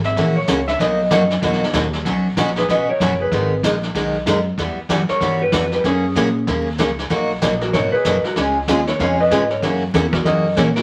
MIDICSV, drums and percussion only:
0, 0, Header, 1, 2, 480
1, 0, Start_track
1, 0, Key_signature, 5, "major"
1, 0, Tempo, 315126
1, 1212, Time_signature, 4, 2, 24, 8
1, 16486, End_track
2, 0, Start_track
2, 0, Title_t, "Drums"
2, 61, Note_on_c, 9, 38, 47
2, 214, Note_off_c, 9, 38, 0
2, 252, Note_on_c, 9, 36, 20
2, 256, Note_on_c, 9, 25, 52
2, 256, Note_on_c, 9, 38, 51
2, 404, Note_off_c, 9, 36, 0
2, 408, Note_off_c, 9, 38, 0
2, 730, Note_on_c, 9, 36, 21
2, 730, Note_on_c, 9, 38, 69
2, 730, Note_on_c, 9, 44, 58
2, 882, Note_off_c, 9, 36, 0
2, 883, Note_off_c, 9, 38, 0
2, 883, Note_off_c, 9, 44, 0
2, 1028, Note_on_c, 9, 38, 42
2, 1180, Note_off_c, 9, 38, 0
2, 1209, Note_on_c, 9, 36, 28
2, 1220, Note_off_c, 9, 25, 0
2, 1220, Note_on_c, 9, 25, 54
2, 1220, Note_on_c, 9, 38, 51
2, 1361, Note_off_c, 9, 36, 0
2, 1372, Note_off_c, 9, 38, 0
2, 1686, Note_on_c, 9, 36, 23
2, 1687, Note_on_c, 9, 38, 66
2, 1687, Note_on_c, 9, 44, 59
2, 1839, Note_off_c, 9, 36, 0
2, 1840, Note_off_c, 9, 38, 0
2, 1840, Note_off_c, 9, 44, 0
2, 1984, Note_on_c, 9, 38, 46
2, 2136, Note_off_c, 9, 38, 0
2, 2164, Note_on_c, 9, 36, 25
2, 2165, Note_off_c, 9, 25, 0
2, 2165, Note_on_c, 9, 25, 53
2, 2165, Note_on_c, 9, 38, 50
2, 2317, Note_off_c, 9, 36, 0
2, 2317, Note_off_c, 9, 38, 0
2, 2327, Note_on_c, 9, 38, 32
2, 2479, Note_off_c, 9, 38, 0
2, 2493, Note_on_c, 9, 38, 52
2, 2639, Note_off_c, 9, 38, 0
2, 2639, Note_on_c, 9, 38, 71
2, 2639, Note_on_c, 9, 44, 53
2, 2643, Note_on_c, 9, 36, 22
2, 2791, Note_off_c, 9, 38, 0
2, 2791, Note_off_c, 9, 44, 0
2, 2796, Note_off_c, 9, 36, 0
2, 2942, Note_on_c, 9, 38, 45
2, 3094, Note_off_c, 9, 38, 0
2, 3126, Note_off_c, 9, 25, 0
2, 3126, Note_on_c, 9, 25, 52
2, 3126, Note_on_c, 9, 36, 27
2, 3126, Note_on_c, 9, 38, 51
2, 3278, Note_off_c, 9, 36, 0
2, 3278, Note_off_c, 9, 38, 0
2, 3604, Note_on_c, 9, 38, 60
2, 3604, Note_on_c, 9, 44, 53
2, 3607, Note_on_c, 9, 36, 20
2, 3756, Note_off_c, 9, 38, 0
2, 3756, Note_off_c, 9, 44, 0
2, 3760, Note_off_c, 9, 36, 0
2, 3773, Note_on_c, 9, 38, 29
2, 3895, Note_off_c, 9, 38, 0
2, 3895, Note_on_c, 9, 38, 42
2, 3930, Note_off_c, 9, 38, 0
2, 3930, Note_on_c, 9, 38, 46
2, 4082, Note_off_c, 9, 38, 0
2, 4091, Note_on_c, 9, 36, 25
2, 4096, Note_off_c, 9, 25, 0
2, 4096, Note_on_c, 9, 25, 52
2, 4096, Note_on_c, 9, 38, 47
2, 4244, Note_off_c, 9, 36, 0
2, 4249, Note_off_c, 9, 38, 0
2, 4573, Note_on_c, 9, 36, 23
2, 4578, Note_on_c, 9, 38, 64
2, 4578, Note_on_c, 9, 44, 52
2, 4725, Note_off_c, 9, 36, 0
2, 4730, Note_off_c, 9, 38, 0
2, 4730, Note_off_c, 9, 44, 0
2, 5052, Note_off_c, 9, 25, 0
2, 5052, Note_on_c, 9, 25, 53
2, 5052, Note_on_c, 9, 38, 47
2, 5053, Note_on_c, 9, 36, 29
2, 5204, Note_off_c, 9, 38, 0
2, 5205, Note_off_c, 9, 36, 0
2, 5534, Note_on_c, 9, 36, 26
2, 5538, Note_on_c, 9, 38, 58
2, 5538, Note_on_c, 9, 44, 61
2, 5686, Note_off_c, 9, 36, 0
2, 5690, Note_off_c, 9, 38, 0
2, 5690, Note_off_c, 9, 44, 0
2, 5833, Note_on_c, 9, 38, 40
2, 5986, Note_off_c, 9, 38, 0
2, 6013, Note_on_c, 9, 36, 25
2, 6016, Note_off_c, 9, 25, 0
2, 6016, Note_on_c, 9, 25, 50
2, 6016, Note_on_c, 9, 38, 46
2, 6165, Note_off_c, 9, 36, 0
2, 6168, Note_off_c, 9, 38, 0
2, 6491, Note_on_c, 9, 36, 24
2, 6494, Note_on_c, 9, 38, 64
2, 6494, Note_on_c, 9, 44, 57
2, 6643, Note_off_c, 9, 36, 0
2, 6646, Note_off_c, 9, 38, 0
2, 6646, Note_off_c, 9, 44, 0
2, 6971, Note_on_c, 9, 36, 29
2, 6976, Note_off_c, 9, 25, 0
2, 6976, Note_on_c, 9, 25, 48
2, 6976, Note_on_c, 9, 38, 46
2, 7124, Note_off_c, 9, 36, 0
2, 7129, Note_off_c, 9, 38, 0
2, 7452, Note_on_c, 9, 36, 26
2, 7457, Note_on_c, 9, 38, 57
2, 7457, Note_on_c, 9, 44, 47
2, 7604, Note_off_c, 9, 36, 0
2, 7609, Note_off_c, 9, 38, 0
2, 7609, Note_off_c, 9, 44, 0
2, 7750, Note_on_c, 9, 38, 42
2, 7903, Note_off_c, 9, 38, 0
2, 7930, Note_on_c, 9, 36, 27
2, 7931, Note_off_c, 9, 25, 0
2, 7931, Note_on_c, 9, 25, 46
2, 7931, Note_on_c, 9, 38, 45
2, 8082, Note_off_c, 9, 36, 0
2, 8083, Note_off_c, 9, 38, 0
2, 8409, Note_on_c, 9, 38, 67
2, 8409, Note_on_c, 9, 44, 65
2, 8411, Note_on_c, 9, 36, 28
2, 8562, Note_off_c, 9, 38, 0
2, 8562, Note_off_c, 9, 44, 0
2, 8563, Note_off_c, 9, 36, 0
2, 8707, Note_on_c, 9, 38, 37
2, 8860, Note_off_c, 9, 38, 0
2, 8896, Note_on_c, 9, 36, 29
2, 8903, Note_off_c, 9, 25, 0
2, 8903, Note_on_c, 9, 25, 50
2, 8903, Note_on_c, 9, 38, 49
2, 9048, Note_off_c, 9, 36, 0
2, 9055, Note_off_c, 9, 38, 0
2, 9375, Note_on_c, 9, 36, 19
2, 9377, Note_on_c, 9, 38, 58
2, 9377, Note_on_c, 9, 44, 54
2, 9527, Note_off_c, 9, 36, 0
2, 9529, Note_off_c, 9, 38, 0
2, 9529, Note_off_c, 9, 44, 0
2, 9859, Note_on_c, 9, 36, 27
2, 9861, Note_off_c, 9, 25, 0
2, 9861, Note_on_c, 9, 25, 56
2, 9861, Note_on_c, 9, 38, 46
2, 10011, Note_off_c, 9, 36, 0
2, 10014, Note_off_c, 9, 38, 0
2, 10340, Note_on_c, 9, 36, 24
2, 10345, Note_on_c, 9, 38, 65
2, 10345, Note_on_c, 9, 44, 54
2, 10493, Note_off_c, 9, 36, 0
2, 10497, Note_off_c, 9, 38, 0
2, 10497, Note_off_c, 9, 44, 0
2, 10641, Note_on_c, 9, 38, 38
2, 10793, Note_off_c, 9, 38, 0
2, 10821, Note_off_c, 9, 25, 0
2, 10821, Note_on_c, 9, 25, 56
2, 10821, Note_on_c, 9, 36, 27
2, 10821, Note_on_c, 9, 38, 47
2, 10973, Note_off_c, 9, 36, 0
2, 10973, Note_off_c, 9, 38, 0
2, 11300, Note_on_c, 9, 36, 18
2, 11302, Note_on_c, 9, 38, 62
2, 11302, Note_on_c, 9, 44, 62
2, 11452, Note_off_c, 9, 36, 0
2, 11454, Note_off_c, 9, 38, 0
2, 11454, Note_off_c, 9, 44, 0
2, 11592, Note_on_c, 9, 38, 43
2, 11744, Note_off_c, 9, 38, 0
2, 11780, Note_off_c, 9, 25, 0
2, 11780, Note_on_c, 9, 25, 51
2, 11780, Note_on_c, 9, 36, 23
2, 11780, Note_on_c, 9, 38, 49
2, 11932, Note_off_c, 9, 36, 0
2, 11932, Note_off_c, 9, 38, 0
2, 12255, Note_on_c, 9, 38, 61
2, 12255, Note_on_c, 9, 44, 66
2, 12259, Note_on_c, 9, 36, 24
2, 12407, Note_off_c, 9, 38, 0
2, 12407, Note_off_c, 9, 44, 0
2, 12411, Note_off_c, 9, 36, 0
2, 12552, Note_on_c, 9, 38, 37
2, 12705, Note_off_c, 9, 38, 0
2, 12730, Note_off_c, 9, 25, 0
2, 12730, Note_on_c, 9, 25, 49
2, 12730, Note_on_c, 9, 38, 49
2, 12736, Note_on_c, 9, 36, 22
2, 12882, Note_off_c, 9, 38, 0
2, 12888, Note_off_c, 9, 36, 0
2, 13218, Note_on_c, 9, 36, 18
2, 13220, Note_on_c, 9, 38, 63
2, 13220, Note_on_c, 9, 44, 61
2, 13370, Note_off_c, 9, 36, 0
2, 13372, Note_off_c, 9, 38, 0
2, 13372, Note_off_c, 9, 44, 0
2, 13514, Note_on_c, 9, 38, 42
2, 13667, Note_off_c, 9, 38, 0
2, 13699, Note_on_c, 9, 36, 23
2, 13702, Note_off_c, 9, 25, 0
2, 13702, Note_on_c, 9, 25, 52
2, 13702, Note_on_c, 9, 38, 46
2, 13852, Note_off_c, 9, 36, 0
2, 13854, Note_off_c, 9, 38, 0
2, 14178, Note_on_c, 9, 36, 19
2, 14181, Note_on_c, 9, 38, 63
2, 14181, Note_on_c, 9, 44, 56
2, 14331, Note_off_c, 9, 36, 0
2, 14333, Note_off_c, 9, 38, 0
2, 14333, Note_off_c, 9, 44, 0
2, 14475, Note_on_c, 9, 38, 39
2, 14627, Note_off_c, 9, 38, 0
2, 14659, Note_on_c, 9, 36, 26
2, 14665, Note_off_c, 9, 25, 0
2, 14665, Note_on_c, 9, 25, 55
2, 14665, Note_on_c, 9, 38, 48
2, 14811, Note_off_c, 9, 36, 0
2, 14817, Note_off_c, 9, 38, 0
2, 15137, Note_on_c, 9, 36, 20
2, 15143, Note_on_c, 9, 38, 63
2, 15143, Note_on_c, 9, 44, 61
2, 15289, Note_off_c, 9, 36, 0
2, 15296, Note_off_c, 9, 38, 0
2, 15296, Note_off_c, 9, 44, 0
2, 15429, Note_on_c, 9, 36, 58
2, 15434, Note_on_c, 9, 38, 42
2, 15581, Note_off_c, 9, 36, 0
2, 15586, Note_off_c, 9, 38, 0
2, 15617, Note_on_c, 9, 36, 25
2, 15623, Note_off_c, 9, 25, 0
2, 15623, Note_on_c, 9, 25, 58
2, 15623, Note_on_c, 9, 38, 46
2, 15769, Note_off_c, 9, 36, 0
2, 15776, Note_off_c, 9, 38, 0
2, 16094, Note_on_c, 9, 36, 25
2, 16101, Note_on_c, 9, 38, 64
2, 16101, Note_on_c, 9, 44, 60
2, 16246, Note_off_c, 9, 36, 0
2, 16253, Note_off_c, 9, 38, 0
2, 16253, Note_off_c, 9, 44, 0
2, 16385, Note_on_c, 9, 38, 57
2, 16486, Note_off_c, 9, 25, 0
2, 16486, Note_off_c, 9, 38, 0
2, 16486, End_track
0, 0, End_of_file